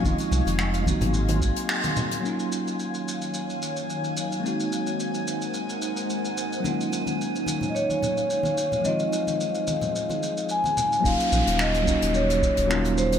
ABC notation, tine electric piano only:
X:1
M:4/4
L:1/8
Q:"Swing 16ths" 1/4=109
K:Ebdor
V:1 name="Tine electric piano"
[F,A,CEF]3 [G,B,CEG]4- [G,B,CEG] | [G,B,DEF]8 | [A,B,CEG]8 | [G,B,DEF]8 |
[F,A,CEF]8 | [G,B,DEF]3 [G,B,DEG]3 [G,B,DEF]2 |]